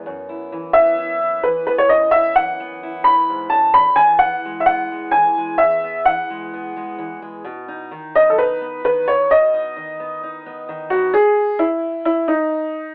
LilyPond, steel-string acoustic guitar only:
\new Staff \with { instrumentName = "Steel-string acoustic guitar" } { \clef bass \time 4/4 \key b \mixolydian \tempo 4 = 130 << { b8 e'4 b8 e'8 b4 b8 | r8 e'4 b8 e'8 b4. | r8 b4 gis8 b8 gis4 gis8 | r8 b4 gis8 b8 gis4 gis8 |
r8 dis'4 b8 dis'8 b4 b8 | r8 dis'4 b8 dis'8 b4 b8 | r1 | } \\ { fis,4 e2 e4 | fis,4 e2 gis,8 fis,8 | e,4 e2 e4 | e,4 e2 e4 |
b,4 dis2 dis4 | b,4 dis2 dis4 | r1 | } >> }